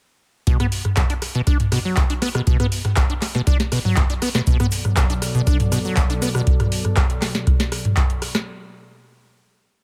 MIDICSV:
0, 0, Header, 1, 4, 480
1, 0, Start_track
1, 0, Key_signature, 2, "minor"
1, 0, Tempo, 500000
1, 450, Time_signature, 4, 2, 24, 8
1, 9444, End_track
2, 0, Start_track
2, 0, Title_t, "Analog synth pad"
2, 0, Program_c, 0, 89
2, 4290, Note_on_c, 0, 47, 84
2, 4290, Note_on_c, 0, 54, 73
2, 4290, Note_on_c, 0, 69, 76
2, 4290, Note_on_c, 0, 74, 90
2, 8092, Note_off_c, 0, 47, 0
2, 8092, Note_off_c, 0, 54, 0
2, 8092, Note_off_c, 0, 69, 0
2, 8092, Note_off_c, 0, 74, 0
2, 9444, End_track
3, 0, Start_track
3, 0, Title_t, "Acid bass"
3, 0, Program_c, 1, 38
3, 451, Note_on_c, 1, 47, 104
3, 553, Note_off_c, 1, 47, 0
3, 575, Note_on_c, 1, 59, 96
3, 638, Note_off_c, 1, 59, 0
3, 931, Note_on_c, 1, 35, 81
3, 999, Note_off_c, 1, 35, 0
3, 1055, Note_on_c, 1, 62, 80
3, 1093, Note_off_c, 1, 62, 0
3, 1295, Note_on_c, 1, 47, 103
3, 1358, Note_off_c, 1, 47, 0
3, 1411, Note_on_c, 1, 62, 97
3, 1513, Note_off_c, 1, 62, 0
3, 1650, Note_on_c, 1, 47, 105
3, 1719, Note_off_c, 1, 47, 0
3, 1775, Note_on_c, 1, 54, 76
3, 1890, Note_on_c, 1, 35, 88
3, 1905, Note_off_c, 1, 54, 0
3, 1959, Note_off_c, 1, 35, 0
3, 2014, Note_on_c, 1, 62, 76
3, 2053, Note_off_c, 1, 62, 0
3, 2129, Note_on_c, 1, 59, 101
3, 2198, Note_off_c, 1, 59, 0
3, 2254, Note_on_c, 1, 47, 104
3, 2318, Note_off_c, 1, 47, 0
3, 2368, Note_on_c, 1, 47, 107
3, 2472, Note_off_c, 1, 47, 0
3, 2493, Note_on_c, 1, 59, 98
3, 2558, Note_off_c, 1, 59, 0
3, 2849, Note_on_c, 1, 35, 84
3, 2918, Note_off_c, 1, 35, 0
3, 2974, Note_on_c, 1, 62, 79
3, 3012, Note_off_c, 1, 62, 0
3, 3214, Note_on_c, 1, 47, 98
3, 3278, Note_off_c, 1, 47, 0
3, 3330, Note_on_c, 1, 62, 103
3, 3433, Note_off_c, 1, 62, 0
3, 3570, Note_on_c, 1, 47, 101
3, 3639, Note_off_c, 1, 47, 0
3, 3695, Note_on_c, 1, 54, 75
3, 3810, Note_on_c, 1, 35, 90
3, 3825, Note_off_c, 1, 54, 0
3, 3879, Note_off_c, 1, 35, 0
3, 3935, Note_on_c, 1, 62, 75
3, 3973, Note_off_c, 1, 62, 0
3, 4051, Note_on_c, 1, 59, 102
3, 4119, Note_off_c, 1, 59, 0
3, 4175, Note_on_c, 1, 47, 98
3, 4238, Note_off_c, 1, 47, 0
3, 4290, Note_on_c, 1, 47, 99
3, 4393, Note_off_c, 1, 47, 0
3, 4416, Note_on_c, 1, 59, 100
3, 4479, Note_off_c, 1, 59, 0
3, 4771, Note_on_c, 1, 35, 85
3, 4839, Note_off_c, 1, 35, 0
3, 4895, Note_on_c, 1, 62, 79
3, 4933, Note_off_c, 1, 62, 0
3, 5135, Note_on_c, 1, 47, 103
3, 5198, Note_off_c, 1, 47, 0
3, 5250, Note_on_c, 1, 62, 99
3, 5353, Note_off_c, 1, 62, 0
3, 5490, Note_on_c, 1, 47, 101
3, 5559, Note_off_c, 1, 47, 0
3, 5614, Note_on_c, 1, 54, 72
3, 5730, Note_on_c, 1, 35, 87
3, 5744, Note_off_c, 1, 54, 0
3, 5799, Note_off_c, 1, 35, 0
3, 5856, Note_on_c, 1, 62, 77
3, 5893, Note_off_c, 1, 62, 0
3, 5970, Note_on_c, 1, 59, 102
3, 6039, Note_off_c, 1, 59, 0
3, 6095, Note_on_c, 1, 47, 96
3, 6159, Note_off_c, 1, 47, 0
3, 9444, End_track
4, 0, Start_track
4, 0, Title_t, "Drums"
4, 450, Note_on_c, 9, 54, 91
4, 451, Note_on_c, 9, 36, 125
4, 451, Note_on_c, 9, 42, 78
4, 546, Note_off_c, 9, 54, 0
4, 547, Note_off_c, 9, 36, 0
4, 547, Note_off_c, 9, 42, 0
4, 575, Note_on_c, 9, 37, 56
4, 575, Note_on_c, 9, 42, 54
4, 575, Note_on_c, 9, 45, 89
4, 671, Note_off_c, 9, 37, 0
4, 671, Note_off_c, 9, 42, 0
4, 671, Note_off_c, 9, 45, 0
4, 690, Note_on_c, 9, 54, 67
4, 691, Note_on_c, 9, 46, 107
4, 786, Note_off_c, 9, 54, 0
4, 787, Note_off_c, 9, 46, 0
4, 815, Note_on_c, 9, 37, 36
4, 815, Note_on_c, 9, 42, 37
4, 815, Note_on_c, 9, 45, 81
4, 911, Note_off_c, 9, 37, 0
4, 911, Note_off_c, 9, 42, 0
4, 911, Note_off_c, 9, 45, 0
4, 928, Note_on_c, 9, 39, 123
4, 930, Note_on_c, 9, 38, 121
4, 930, Note_on_c, 9, 54, 92
4, 931, Note_on_c, 9, 36, 114
4, 931, Note_on_c, 9, 37, 80
4, 931, Note_on_c, 9, 42, 82
4, 1024, Note_off_c, 9, 39, 0
4, 1026, Note_off_c, 9, 38, 0
4, 1026, Note_off_c, 9, 54, 0
4, 1027, Note_off_c, 9, 36, 0
4, 1027, Note_off_c, 9, 37, 0
4, 1027, Note_off_c, 9, 42, 0
4, 1054, Note_on_c, 9, 42, 47
4, 1055, Note_off_c, 9, 42, 0
4, 1055, Note_on_c, 9, 42, 56
4, 1151, Note_off_c, 9, 42, 0
4, 1169, Note_on_c, 9, 54, 73
4, 1171, Note_on_c, 9, 37, 57
4, 1171, Note_on_c, 9, 46, 103
4, 1265, Note_off_c, 9, 54, 0
4, 1267, Note_off_c, 9, 37, 0
4, 1267, Note_off_c, 9, 46, 0
4, 1295, Note_on_c, 9, 42, 38
4, 1391, Note_off_c, 9, 42, 0
4, 1409, Note_on_c, 9, 54, 90
4, 1410, Note_on_c, 9, 37, 35
4, 1410, Note_on_c, 9, 42, 81
4, 1411, Note_on_c, 9, 36, 127
4, 1505, Note_off_c, 9, 54, 0
4, 1506, Note_off_c, 9, 37, 0
4, 1506, Note_off_c, 9, 42, 0
4, 1507, Note_off_c, 9, 36, 0
4, 1535, Note_on_c, 9, 42, 57
4, 1535, Note_on_c, 9, 45, 90
4, 1631, Note_off_c, 9, 42, 0
4, 1631, Note_off_c, 9, 45, 0
4, 1650, Note_on_c, 9, 37, 58
4, 1650, Note_on_c, 9, 46, 104
4, 1650, Note_on_c, 9, 54, 69
4, 1746, Note_off_c, 9, 37, 0
4, 1746, Note_off_c, 9, 46, 0
4, 1746, Note_off_c, 9, 54, 0
4, 1888, Note_on_c, 9, 39, 126
4, 1890, Note_on_c, 9, 37, 39
4, 1890, Note_on_c, 9, 38, 124
4, 1890, Note_on_c, 9, 42, 83
4, 1890, Note_on_c, 9, 54, 96
4, 1891, Note_on_c, 9, 36, 123
4, 1984, Note_off_c, 9, 39, 0
4, 1986, Note_off_c, 9, 37, 0
4, 1986, Note_off_c, 9, 38, 0
4, 1986, Note_off_c, 9, 42, 0
4, 1986, Note_off_c, 9, 54, 0
4, 1987, Note_off_c, 9, 36, 0
4, 2015, Note_on_c, 9, 42, 56
4, 2111, Note_off_c, 9, 42, 0
4, 2130, Note_on_c, 9, 54, 73
4, 2131, Note_on_c, 9, 37, 60
4, 2131, Note_on_c, 9, 38, 34
4, 2131, Note_on_c, 9, 46, 103
4, 2226, Note_off_c, 9, 54, 0
4, 2227, Note_off_c, 9, 37, 0
4, 2227, Note_off_c, 9, 38, 0
4, 2227, Note_off_c, 9, 46, 0
4, 2255, Note_on_c, 9, 37, 88
4, 2255, Note_on_c, 9, 42, 40
4, 2351, Note_off_c, 9, 37, 0
4, 2351, Note_off_c, 9, 42, 0
4, 2369, Note_on_c, 9, 54, 93
4, 2370, Note_on_c, 9, 42, 76
4, 2371, Note_on_c, 9, 36, 126
4, 2465, Note_off_c, 9, 54, 0
4, 2466, Note_off_c, 9, 42, 0
4, 2467, Note_off_c, 9, 36, 0
4, 2494, Note_on_c, 9, 37, 59
4, 2494, Note_on_c, 9, 42, 51
4, 2494, Note_on_c, 9, 45, 94
4, 2590, Note_off_c, 9, 37, 0
4, 2590, Note_off_c, 9, 42, 0
4, 2590, Note_off_c, 9, 45, 0
4, 2610, Note_on_c, 9, 46, 108
4, 2610, Note_on_c, 9, 54, 69
4, 2706, Note_off_c, 9, 46, 0
4, 2706, Note_off_c, 9, 54, 0
4, 2734, Note_on_c, 9, 37, 40
4, 2734, Note_on_c, 9, 38, 60
4, 2734, Note_on_c, 9, 42, 39
4, 2734, Note_on_c, 9, 45, 86
4, 2830, Note_off_c, 9, 37, 0
4, 2830, Note_off_c, 9, 38, 0
4, 2830, Note_off_c, 9, 42, 0
4, 2830, Note_off_c, 9, 45, 0
4, 2846, Note_on_c, 9, 39, 127
4, 2849, Note_on_c, 9, 37, 77
4, 2849, Note_on_c, 9, 38, 119
4, 2849, Note_on_c, 9, 42, 83
4, 2849, Note_on_c, 9, 54, 95
4, 2851, Note_on_c, 9, 36, 124
4, 2942, Note_off_c, 9, 39, 0
4, 2945, Note_off_c, 9, 37, 0
4, 2945, Note_off_c, 9, 38, 0
4, 2945, Note_off_c, 9, 42, 0
4, 2945, Note_off_c, 9, 54, 0
4, 2947, Note_off_c, 9, 36, 0
4, 2974, Note_on_c, 9, 42, 53
4, 3070, Note_off_c, 9, 42, 0
4, 3087, Note_on_c, 9, 39, 38
4, 3090, Note_on_c, 9, 37, 56
4, 3090, Note_on_c, 9, 38, 58
4, 3090, Note_on_c, 9, 46, 112
4, 3090, Note_on_c, 9, 54, 70
4, 3183, Note_off_c, 9, 39, 0
4, 3186, Note_off_c, 9, 37, 0
4, 3186, Note_off_c, 9, 38, 0
4, 3186, Note_off_c, 9, 46, 0
4, 3186, Note_off_c, 9, 54, 0
4, 3214, Note_on_c, 9, 38, 56
4, 3214, Note_on_c, 9, 42, 36
4, 3310, Note_off_c, 9, 38, 0
4, 3310, Note_off_c, 9, 42, 0
4, 3330, Note_on_c, 9, 36, 127
4, 3330, Note_on_c, 9, 37, 37
4, 3330, Note_on_c, 9, 42, 80
4, 3330, Note_on_c, 9, 54, 91
4, 3426, Note_off_c, 9, 36, 0
4, 3426, Note_off_c, 9, 37, 0
4, 3426, Note_off_c, 9, 42, 0
4, 3426, Note_off_c, 9, 54, 0
4, 3454, Note_on_c, 9, 38, 61
4, 3454, Note_on_c, 9, 42, 57
4, 3550, Note_off_c, 9, 38, 0
4, 3550, Note_off_c, 9, 42, 0
4, 3570, Note_on_c, 9, 37, 62
4, 3570, Note_on_c, 9, 46, 114
4, 3570, Note_on_c, 9, 54, 65
4, 3666, Note_off_c, 9, 37, 0
4, 3666, Note_off_c, 9, 46, 0
4, 3666, Note_off_c, 9, 54, 0
4, 3694, Note_on_c, 9, 45, 93
4, 3790, Note_off_c, 9, 45, 0
4, 3807, Note_on_c, 9, 39, 127
4, 3809, Note_on_c, 9, 37, 38
4, 3809, Note_on_c, 9, 42, 79
4, 3810, Note_on_c, 9, 38, 127
4, 3810, Note_on_c, 9, 54, 92
4, 3811, Note_on_c, 9, 36, 121
4, 3903, Note_off_c, 9, 39, 0
4, 3905, Note_off_c, 9, 37, 0
4, 3905, Note_off_c, 9, 42, 0
4, 3906, Note_off_c, 9, 38, 0
4, 3906, Note_off_c, 9, 54, 0
4, 3907, Note_off_c, 9, 36, 0
4, 3934, Note_on_c, 9, 42, 54
4, 3935, Note_off_c, 9, 42, 0
4, 3935, Note_on_c, 9, 42, 48
4, 4031, Note_off_c, 9, 42, 0
4, 4050, Note_on_c, 9, 37, 58
4, 4050, Note_on_c, 9, 46, 110
4, 4050, Note_on_c, 9, 54, 73
4, 4146, Note_off_c, 9, 37, 0
4, 4146, Note_off_c, 9, 46, 0
4, 4146, Note_off_c, 9, 54, 0
4, 4174, Note_on_c, 9, 37, 85
4, 4174, Note_on_c, 9, 38, 84
4, 4270, Note_off_c, 9, 37, 0
4, 4270, Note_off_c, 9, 38, 0
4, 4288, Note_on_c, 9, 82, 51
4, 4290, Note_on_c, 9, 36, 127
4, 4290, Note_on_c, 9, 42, 77
4, 4290, Note_on_c, 9, 54, 97
4, 4384, Note_off_c, 9, 82, 0
4, 4386, Note_off_c, 9, 36, 0
4, 4386, Note_off_c, 9, 42, 0
4, 4386, Note_off_c, 9, 54, 0
4, 4412, Note_on_c, 9, 82, 29
4, 4415, Note_on_c, 9, 37, 58
4, 4415, Note_on_c, 9, 42, 51
4, 4415, Note_on_c, 9, 45, 98
4, 4508, Note_off_c, 9, 82, 0
4, 4511, Note_off_c, 9, 37, 0
4, 4511, Note_off_c, 9, 42, 0
4, 4511, Note_off_c, 9, 45, 0
4, 4524, Note_on_c, 9, 82, 89
4, 4530, Note_on_c, 9, 46, 113
4, 4530, Note_on_c, 9, 54, 68
4, 4620, Note_off_c, 9, 82, 0
4, 4626, Note_off_c, 9, 46, 0
4, 4626, Note_off_c, 9, 54, 0
4, 4652, Note_on_c, 9, 82, 39
4, 4655, Note_on_c, 9, 37, 40
4, 4655, Note_on_c, 9, 42, 36
4, 4655, Note_on_c, 9, 45, 86
4, 4748, Note_off_c, 9, 82, 0
4, 4751, Note_off_c, 9, 37, 0
4, 4751, Note_off_c, 9, 42, 0
4, 4751, Note_off_c, 9, 45, 0
4, 4768, Note_on_c, 9, 39, 127
4, 4769, Note_on_c, 9, 82, 60
4, 4770, Note_on_c, 9, 36, 127
4, 4770, Note_on_c, 9, 37, 77
4, 4770, Note_on_c, 9, 38, 125
4, 4770, Note_on_c, 9, 42, 77
4, 4770, Note_on_c, 9, 54, 91
4, 4864, Note_off_c, 9, 39, 0
4, 4865, Note_off_c, 9, 82, 0
4, 4866, Note_off_c, 9, 36, 0
4, 4866, Note_off_c, 9, 37, 0
4, 4866, Note_off_c, 9, 38, 0
4, 4866, Note_off_c, 9, 42, 0
4, 4866, Note_off_c, 9, 54, 0
4, 4893, Note_on_c, 9, 82, 29
4, 4895, Note_on_c, 9, 42, 46
4, 4989, Note_off_c, 9, 82, 0
4, 4991, Note_off_c, 9, 42, 0
4, 5010, Note_on_c, 9, 37, 62
4, 5010, Note_on_c, 9, 46, 113
4, 5011, Note_on_c, 9, 54, 71
4, 5018, Note_on_c, 9, 82, 95
4, 5106, Note_off_c, 9, 37, 0
4, 5106, Note_off_c, 9, 46, 0
4, 5107, Note_off_c, 9, 54, 0
4, 5114, Note_off_c, 9, 82, 0
4, 5132, Note_on_c, 9, 82, 42
4, 5134, Note_on_c, 9, 42, 36
4, 5228, Note_off_c, 9, 82, 0
4, 5230, Note_off_c, 9, 42, 0
4, 5249, Note_on_c, 9, 82, 56
4, 5250, Note_on_c, 9, 37, 39
4, 5250, Note_on_c, 9, 42, 74
4, 5251, Note_on_c, 9, 36, 127
4, 5251, Note_on_c, 9, 54, 90
4, 5345, Note_off_c, 9, 82, 0
4, 5346, Note_off_c, 9, 37, 0
4, 5346, Note_off_c, 9, 42, 0
4, 5347, Note_off_c, 9, 36, 0
4, 5347, Note_off_c, 9, 54, 0
4, 5372, Note_on_c, 9, 82, 28
4, 5375, Note_on_c, 9, 42, 55
4, 5375, Note_on_c, 9, 45, 92
4, 5468, Note_off_c, 9, 82, 0
4, 5471, Note_off_c, 9, 42, 0
4, 5471, Note_off_c, 9, 45, 0
4, 5490, Note_on_c, 9, 37, 63
4, 5490, Note_on_c, 9, 46, 113
4, 5491, Note_on_c, 9, 54, 71
4, 5493, Note_on_c, 9, 82, 96
4, 5586, Note_off_c, 9, 37, 0
4, 5586, Note_off_c, 9, 46, 0
4, 5587, Note_off_c, 9, 54, 0
4, 5589, Note_off_c, 9, 82, 0
4, 5611, Note_on_c, 9, 82, 46
4, 5707, Note_off_c, 9, 82, 0
4, 5728, Note_on_c, 9, 39, 126
4, 5730, Note_on_c, 9, 36, 124
4, 5730, Note_on_c, 9, 37, 41
4, 5730, Note_on_c, 9, 38, 127
4, 5730, Note_on_c, 9, 42, 77
4, 5730, Note_on_c, 9, 54, 97
4, 5731, Note_on_c, 9, 82, 58
4, 5824, Note_off_c, 9, 39, 0
4, 5826, Note_off_c, 9, 36, 0
4, 5826, Note_off_c, 9, 37, 0
4, 5826, Note_off_c, 9, 38, 0
4, 5826, Note_off_c, 9, 42, 0
4, 5826, Note_off_c, 9, 54, 0
4, 5827, Note_off_c, 9, 82, 0
4, 5855, Note_on_c, 9, 42, 51
4, 5855, Note_on_c, 9, 82, 30
4, 5951, Note_off_c, 9, 42, 0
4, 5951, Note_off_c, 9, 82, 0
4, 5970, Note_on_c, 9, 37, 56
4, 5970, Note_on_c, 9, 38, 34
4, 5970, Note_on_c, 9, 46, 110
4, 5970, Note_on_c, 9, 54, 76
4, 5972, Note_on_c, 9, 82, 108
4, 6066, Note_off_c, 9, 37, 0
4, 6066, Note_off_c, 9, 38, 0
4, 6066, Note_off_c, 9, 46, 0
4, 6066, Note_off_c, 9, 54, 0
4, 6068, Note_off_c, 9, 82, 0
4, 6095, Note_on_c, 9, 37, 81
4, 6095, Note_on_c, 9, 42, 37
4, 6096, Note_on_c, 9, 82, 42
4, 6191, Note_off_c, 9, 37, 0
4, 6191, Note_off_c, 9, 42, 0
4, 6192, Note_off_c, 9, 82, 0
4, 6210, Note_on_c, 9, 36, 127
4, 6210, Note_on_c, 9, 42, 73
4, 6306, Note_off_c, 9, 36, 0
4, 6306, Note_off_c, 9, 42, 0
4, 6335, Note_on_c, 9, 37, 62
4, 6335, Note_on_c, 9, 42, 50
4, 6335, Note_on_c, 9, 45, 90
4, 6431, Note_off_c, 9, 37, 0
4, 6431, Note_off_c, 9, 42, 0
4, 6431, Note_off_c, 9, 45, 0
4, 6450, Note_on_c, 9, 46, 112
4, 6546, Note_off_c, 9, 46, 0
4, 6574, Note_on_c, 9, 37, 41
4, 6574, Note_on_c, 9, 42, 35
4, 6574, Note_on_c, 9, 45, 83
4, 6670, Note_off_c, 9, 37, 0
4, 6670, Note_off_c, 9, 42, 0
4, 6670, Note_off_c, 9, 45, 0
4, 6687, Note_on_c, 9, 39, 114
4, 6690, Note_on_c, 9, 36, 122
4, 6690, Note_on_c, 9, 37, 78
4, 6690, Note_on_c, 9, 42, 79
4, 6783, Note_off_c, 9, 39, 0
4, 6786, Note_off_c, 9, 36, 0
4, 6786, Note_off_c, 9, 37, 0
4, 6786, Note_off_c, 9, 42, 0
4, 6814, Note_on_c, 9, 42, 54
4, 6910, Note_off_c, 9, 42, 0
4, 6928, Note_on_c, 9, 39, 37
4, 6930, Note_on_c, 9, 37, 64
4, 6930, Note_on_c, 9, 38, 67
4, 6930, Note_on_c, 9, 46, 114
4, 7024, Note_off_c, 9, 39, 0
4, 7026, Note_off_c, 9, 37, 0
4, 7026, Note_off_c, 9, 38, 0
4, 7026, Note_off_c, 9, 46, 0
4, 7055, Note_on_c, 9, 38, 65
4, 7055, Note_on_c, 9, 42, 37
4, 7151, Note_off_c, 9, 38, 0
4, 7151, Note_off_c, 9, 42, 0
4, 7170, Note_on_c, 9, 36, 127
4, 7171, Note_on_c, 9, 37, 39
4, 7171, Note_on_c, 9, 42, 72
4, 7266, Note_off_c, 9, 36, 0
4, 7267, Note_off_c, 9, 37, 0
4, 7267, Note_off_c, 9, 42, 0
4, 7295, Note_on_c, 9, 38, 66
4, 7295, Note_on_c, 9, 42, 55
4, 7391, Note_off_c, 9, 38, 0
4, 7391, Note_off_c, 9, 42, 0
4, 7411, Note_on_c, 9, 37, 65
4, 7411, Note_on_c, 9, 46, 110
4, 7507, Note_off_c, 9, 37, 0
4, 7507, Note_off_c, 9, 46, 0
4, 7535, Note_on_c, 9, 42, 37
4, 7535, Note_on_c, 9, 45, 91
4, 7631, Note_off_c, 9, 42, 0
4, 7631, Note_off_c, 9, 45, 0
4, 7648, Note_on_c, 9, 39, 124
4, 7651, Note_on_c, 9, 36, 122
4, 7651, Note_on_c, 9, 37, 42
4, 7651, Note_on_c, 9, 42, 74
4, 7744, Note_off_c, 9, 39, 0
4, 7747, Note_off_c, 9, 36, 0
4, 7747, Note_off_c, 9, 37, 0
4, 7747, Note_off_c, 9, 42, 0
4, 7775, Note_on_c, 9, 42, 52
4, 7871, Note_off_c, 9, 42, 0
4, 7890, Note_on_c, 9, 37, 60
4, 7890, Note_on_c, 9, 46, 109
4, 7986, Note_off_c, 9, 37, 0
4, 7986, Note_off_c, 9, 46, 0
4, 8014, Note_on_c, 9, 37, 83
4, 8014, Note_on_c, 9, 38, 90
4, 8110, Note_off_c, 9, 37, 0
4, 8110, Note_off_c, 9, 38, 0
4, 9444, End_track
0, 0, End_of_file